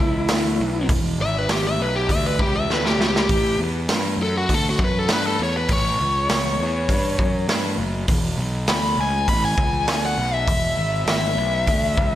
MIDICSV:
0, 0, Header, 1, 4, 480
1, 0, Start_track
1, 0, Tempo, 598802
1, 725, Time_signature, 4, 2, 24, 8
1, 9740, End_track
2, 0, Start_track
2, 0, Title_t, "Lead electric guitar"
2, 0, Program_c, 0, 29
2, 0, Note_on_c, 0, 64, 83
2, 691, Note_off_c, 0, 64, 0
2, 977, Note_on_c, 0, 76, 99
2, 1088, Note_off_c, 0, 76, 0
2, 1110, Note_on_c, 0, 71, 68
2, 1212, Note_on_c, 0, 67, 83
2, 1215, Note_off_c, 0, 71, 0
2, 1325, Note_off_c, 0, 67, 0
2, 1341, Note_on_c, 0, 76, 89
2, 1450, Note_off_c, 0, 76, 0
2, 1458, Note_on_c, 0, 71, 84
2, 1568, Note_off_c, 0, 71, 0
2, 1568, Note_on_c, 0, 67, 86
2, 1683, Note_off_c, 0, 67, 0
2, 1694, Note_on_c, 0, 76, 99
2, 1806, Note_off_c, 0, 76, 0
2, 1815, Note_on_c, 0, 71, 82
2, 1927, Note_off_c, 0, 71, 0
2, 1938, Note_on_c, 0, 67, 80
2, 2048, Note_off_c, 0, 67, 0
2, 2048, Note_on_c, 0, 76, 93
2, 2163, Note_off_c, 0, 76, 0
2, 2194, Note_on_c, 0, 71, 73
2, 2287, Note_on_c, 0, 67, 88
2, 2296, Note_off_c, 0, 71, 0
2, 2403, Note_off_c, 0, 67, 0
2, 2421, Note_on_c, 0, 67, 102
2, 2879, Note_off_c, 0, 67, 0
2, 3387, Note_on_c, 0, 69, 107
2, 3493, Note_off_c, 0, 69, 0
2, 3508, Note_on_c, 0, 66, 82
2, 3641, Note_off_c, 0, 66, 0
2, 3641, Note_on_c, 0, 69, 89
2, 3740, Note_off_c, 0, 69, 0
2, 3768, Note_on_c, 0, 66, 78
2, 3864, Note_off_c, 0, 66, 0
2, 3880, Note_on_c, 0, 71, 80
2, 3998, Note_off_c, 0, 71, 0
2, 3998, Note_on_c, 0, 69, 93
2, 4106, Note_off_c, 0, 69, 0
2, 4106, Note_on_c, 0, 71, 89
2, 4212, Note_off_c, 0, 71, 0
2, 4222, Note_on_c, 0, 69, 85
2, 4330, Note_off_c, 0, 69, 0
2, 4355, Note_on_c, 0, 73, 85
2, 4457, Note_off_c, 0, 73, 0
2, 4467, Note_on_c, 0, 71, 81
2, 4583, Note_off_c, 0, 71, 0
2, 4583, Note_on_c, 0, 73, 98
2, 5982, Note_off_c, 0, 73, 0
2, 6965, Note_on_c, 0, 83, 99
2, 7198, Note_off_c, 0, 83, 0
2, 7220, Note_on_c, 0, 80, 92
2, 7444, Note_off_c, 0, 80, 0
2, 7447, Note_on_c, 0, 83, 91
2, 7563, Note_off_c, 0, 83, 0
2, 7575, Note_on_c, 0, 80, 82
2, 8037, Note_off_c, 0, 80, 0
2, 8061, Note_on_c, 0, 78, 98
2, 8287, Note_off_c, 0, 78, 0
2, 8287, Note_on_c, 0, 76, 91
2, 8870, Note_off_c, 0, 76, 0
2, 8900, Note_on_c, 0, 76, 96
2, 9740, Note_off_c, 0, 76, 0
2, 9740, End_track
3, 0, Start_track
3, 0, Title_t, "Picked electric bass"
3, 0, Program_c, 1, 34
3, 0, Note_on_c, 1, 37, 84
3, 214, Note_off_c, 1, 37, 0
3, 244, Note_on_c, 1, 38, 77
3, 461, Note_off_c, 1, 38, 0
3, 486, Note_on_c, 1, 35, 89
3, 701, Note_off_c, 1, 35, 0
3, 716, Note_on_c, 1, 28, 86
3, 936, Note_off_c, 1, 28, 0
3, 964, Note_on_c, 1, 32, 86
3, 1181, Note_off_c, 1, 32, 0
3, 1199, Note_on_c, 1, 32, 83
3, 1418, Note_off_c, 1, 32, 0
3, 1441, Note_on_c, 1, 35, 88
3, 1659, Note_off_c, 1, 35, 0
3, 1675, Note_on_c, 1, 38, 94
3, 1896, Note_off_c, 1, 38, 0
3, 1917, Note_on_c, 1, 37, 84
3, 2137, Note_off_c, 1, 37, 0
3, 2158, Note_on_c, 1, 38, 80
3, 2377, Note_off_c, 1, 38, 0
3, 2393, Note_on_c, 1, 37, 89
3, 2615, Note_off_c, 1, 37, 0
3, 2639, Note_on_c, 1, 33, 81
3, 2858, Note_off_c, 1, 33, 0
3, 2870, Note_on_c, 1, 40, 83
3, 3093, Note_off_c, 1, 40, 0
3, 3118, Note_on_c, 1, 43, 80
3, 3337, Note_off_c, 1, 43, 0
3, 3347, Note_on_c, 1, 42, 83
3, 3571, Note_off_c, 1, 42, 0
3, 3603, Note_on_c, 1, 38, 88
3, 3820, Note_off_c, 1, 38, 0
3, 3839, Note_on_c, 1, 42, 79
3, 4058, Note_off_c, 1, 42, 0
3, 4087, Note_on_c, 1, 43, 86
3, 4302, Note_off_c, 1, 43, 0
3, 4324, Note_on_c, 1, 40, 87
3, 4541, Note_off_c, 1, 40, 0
3, 4563, Note_on_c, 1, 33, 93
3, 4780, Note_off_c, 1, 33, 0
3, 4809, Note_on_c, 1, 37, 86
3, 5023, Note_off_c, 1, 37, 0
3, 5047, Note_on_c, 1, 37, 82
3, 5262, Note_off_c, 1, 37, 0
3, 5284, Note_on_c, 1, 40, 91
3, 5500, Note_off_c, 1, 40, 0
3, 5521, Note_on_c, 1, 43, 94
3, 5739, Note_off_c, 1, 43, 0
3, 5760, Note_on_c, 1, 42, 86
3, 5978, Note_off_c, 1, 42, 0
3, 6001, Note_on_c, 1, 43, 88
3, 6219, Note_off_c, 1, 43, 0
3, 6236, Note_on_c, 1, 30, 96
3, 6456, Note_off_c, 1, 30, 0
3, 6474, Note_on_c, 1, 28, 84
3, 6695, Note_off_c, 1, 28, 0
3, 6715, Note_on_c, 1, 35, 98
3, 6936, Note_off_c, 1, 35, 0
3, 6961, Note_on_c, 1, 38, 78
3, 7179, Note_off_c, 1, 38, 0
3, 7197, Note_on_c, 1, 37, 100
3, 7417, Note_off_c, 1, 37, 0
3, 7441, Note_on_c, 1, 33, 83
3, 7659, Note_off_c, 1, 33, 0
3, 7673, Note_on_c, 1, 37, 83
3, 7895, Note_off_c, 1, 37, 0
3, 7917, Note_on_c, 1, 38, 89
3, 8137, Note_off_c, 1, 38, 0
3, 8160, Note_on_c, 1, 35, 92
3, 8379, Note_off_c, 1, 35, 0
3, 8397, Note_on_c, 1, 28, 89
3, 8618, Note_off_c, 1, 28, 0
3, 8635, Note_on_c, 1, 32, 93
3, 8857, Note_off_c, 1, 32, 0
3, 8870, Note_on_c, 1, 32, 79
3, 9094, Note_off_c, 1, 32, 0
3, 9118, Note_on_c, 1, 35, 95
3, 9339, Note_off_c, 1, 35, 0
3, 9356, Note_on_c, 1, 38, 86
3, 9578, Note_off_c, 1, 38, 0
3, 9595, Note_on_c, 1, 37, 77
3, 9740, Note_off_c, 1, 37, 0
3, 9740, End_track
4, 0, Start_track
4, 0, Title_t, "Drums"
4, 227, Note_on_c, 9, 46, 55
4, 231, Note_on_c, 9, 38, 113
4, 308, Note_off_c, 9, 46, 0
4, 311, Note_off_c, 9, 38, 0
4, 712, Note_on_c, 9, 46, 55
4, 714, Note_on_c, 9, 36, 108
4, 793, Note_off_c, 9, 46, 0
4, 795, Note_off_c, 9, 36, 0
4, 1194, Note_on_c, 9, 46, 51
4, 1197, Note_on_c, 9, 38, 105
4, 1274, Note_off_c, 9, 46, 0
4, 1277, Note_off_c, 9, 38, 0
4, 1678, Note_on_c, 9, 36, 78
4, 1679, Note_on_c, 9, 46, 56
4, 1758, Note_off_c, 9, 36, 0
4, 1759, Note_off_c, 9, 46, 0
4, 1919, Note_on_c, 9, 36, 88
4, 1999, Note_off_c, 9, 36, 0
4, 2167, Note_on_c, 9, 38, 64
4, 2247, Note_off_c, 9, 38, 0
4, 2292, Note_on_c, 9, 38, 61
4, 2372, Note_off_c, 9, 38, 0
4, 2410, Note_on_c, 9, 38, 80
4, 2490, Note_off_c, 9, 38, 0
4, 2534, Note_on_c, 9, 38, 95
4, 2615, Note_off_c, 9, 38, 0
4, 2637, Note_on_c, 9, 46, 57
4, 2640, Note_on_c, 9, 36, 102
4, 2718, Note_off_c, 9, 46, 0
4, 2721, Note_off_c, 9, 36, 0
4, 3115, Note_on_c, 9, 46, 59
4, 3118, Note_on_c, 9, 38, 108
4, 3195, Note_off_c, 9, 46, 0
4, 3198, Note_off_c, 9, 38, 0
4, 3600, Note_on_c, 9, 36, 75
4, 3601, Note_on_c, 9, 46, 53
4, 3680, Note_off_c, 9, 36, 0
4, 3681, Note_off_c, 9, 46, 0
4, 3840, Note_on_c, 9, 36, 89
4, 3920, Note_off_c, 9, 36, 0
4, 4075, Note_on_c, 9, 46, 61
4, 4079, Note_on_c, 9, 38, 112
4, 4156, Note_off_c, 9, 46, 0
4, 4159, Note_off_c, 9, 38, 0
4, 4557, Note_on_c, 9, 46, 52
4, 4563, Note_on_c, 9, 36, 102
4, 4637, Note_off_c, 9, 46, 0
4, 4643, Note_off_c, 9, 36, 0
4, 5045, Note_on_c, 9, 46, 53
4, 5048, Note_on_c, 9, 38, 102
4, 5125, Note_off_c, 9, 46, 0
4, 5128, Note_off_c, 9, 38, 0
4, 5522, Note_on_c, 9, 36, 81
4, 5525, Note_on_c, 9, 46, 55
4, 5603, Note_off_c, 9, 36, 0
4, 5605, Note_off_c, 9, 46, 0
4, 5762, Note_on_c, 9, 36, 85
4, 5843, Note_off_c, 9, 36, 0
4, 6002, Note_on_c, 9, 46, 57
4, 6005, Note_on_c, 9, 38, 120
4, 6082, Note_off_c, 9, 46, 0
4, 6085, Note_off_c, 9, 38, 0
4, 6477, Note_on_c, 9, 46, 62
4, 6479, Note_on_c, 9, 36, 101
4, 6557, Note_off_c, 9, 46, 0
4, 6559, Note_off_c, 9, 36, 0
4, 6954, Note_on_c, 9, 46, 53
4, 6957, Note_on_c, 9, 38, 107
4, 7034, Note_off_c, 9, 46, 0
4, 7037, Note_off_c, 9, 38, 0
4, 7437, Note_on_c, 9, 46, 57
4, 7438, Note_on_c, 9, 36, 83
4, 7518, Note_off_c, 9, 46, 0
4, 7519, Note_off_c, 9, 36, 0
4, 7677, Note_on_c, 9, 36, 90
4, 7757, Note_off_c, 9, 36, 0
4, 7916, Note_on_c, 9, 46, 58
4, 7919, Note_on_c, 9, 38, 108
4, 7996, Note_off_c, 9, 46, 0
4, 7999, Note_off_c, 9, 38, 0
4, 8397, Note_on_c, 9, 36, 101
4, 8400, Note_on_c, 9, 46, 59
4, 8477, Note_off_c, 9, 36, 0
4, 8480, Note_off_c, 9, 46, 0
4, 8877, Note_on_c, 9, 46, 53
4, 8880, Note_on_c, 9, 38, 112
4, 8957, Note_off_c, 9, 46, 0
4, 8960, Note_off_c, 9, 38, 0
4, 9356, Note_on_c, 9, 46, 52
4, 9358, Note_on_c, 9, 36, 86
4, 9436, Note_off_c, 9, 46, 0
4, 9439, Note_off_c, 9, 36, 0
4, 9599, Note_on_c, 9, 36, 85
4, 9679, Note_off_c, 9, 36, 0
4, 9740, End_track
0, 0, End_of_file